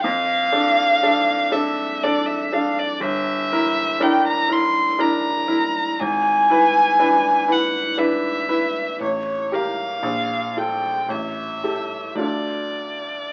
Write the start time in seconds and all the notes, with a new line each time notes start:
0.03 F2 F5
0.52 D4 A4
1.03 D4 A4
1.52 D4 A4 E5
2.03 D4 A4 D5
2.27 E5
2.53 D4 A4 F5
2.79 D5
3.00 G1
3.04 E5
3.52 E4 A#4
4.00 D4 E4 A#4 G5
4.28 A#5
4.49 E4 A#4
4.53 C6
4.99 D4 E4 A#4 A#5
5.48 E4 A#4
6.00 G#1 G#5
6.50 E4 B4
6.99 D4 E4 B4
7.48 E4 B4 F#5
7.97 D4 E4 B4 E5
8.49 E4 B4
9.01 A1 C#5
9.52 G4 A#4 F5
10.03 A#1
10.57 F4 A4 G5
11.08 A1 E5
11.64 G4 A4
12.15 D2 D4 F4
12.19 A4 D5